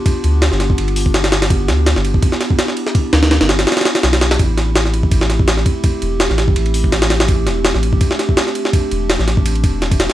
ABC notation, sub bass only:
X:1
M:4/4
L:1/16
Q:"Swing 16ths" 1/4=166
K:Am
V:1 name="Sub bass" clef=bass
z2 D,,3 G,,,3 G,,,8- | G,,,2 D,,3 G,,,3 z8 | z2 D,,3 G,,,3 z4 B,,,4 | A,,,12- A,,,2 z2 |
z2 E,,,3 A,,,3 A,,,8- | A,,,2 E,,,3 A,,,3 z8 | z2 E,,,3 A,,,4- A,,, E,,,4- E,,, z |]